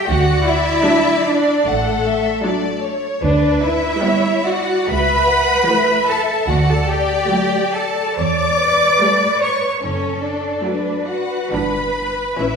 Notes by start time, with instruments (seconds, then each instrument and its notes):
0.07 double bass section D2, cello section F#4, violin section D5 F#5
0.48 cello section E4, violin section E5
0.87 viola section F#3 D4
1.27 cello section D4, violin section D5
1.66 double bass section A1, cello section A3, violin section A4 F#5
2.06 violin section E5
2.44 viola section F#3 D4, violin section D5
2.82 violin section C#5
3.22 double bass section D2, cello section D4, violin section B4 D5
3.63 cello section E4, violin section E5
4.03 viola section G3 B3, violin section C#5
4.46 cello section F#4, violin section D5 F#5
4.88 double bass section C#2, cello section B4, violin section E5 B5
5.29 violin section F#5
5.69 viola section E3 A3, violin section E5
6.09 cello section A4, violin section A5
6.49 double bass section D2, cello section F#4, violin section D5 F#5
6.69 cello section A4, violin section A5
6.89 cello section G4, violin section G5
7.31 viola section F#3 A3
7.74 cello section A4, violin section A5
8.18 double bass section E2, violin section C#5 D6, cello section D5
8.61 violin section B4
9.02 viola section G3 A3
9.42 cello section C#5, violin section C#6
9.83 double bass section F#1, cello section C#4, violin section A4 C#5
10.23 cello section D4, violin section D5
10.64 viola section F#3 A3, violin section B4
11.07 cello section F#4, violin section F#5
11.53 double bass section G1, viola section E3 D4, cello section B4, violin section B5
12.39 double bass section A1, viola section E3 C#4, cello section E4, violin section E5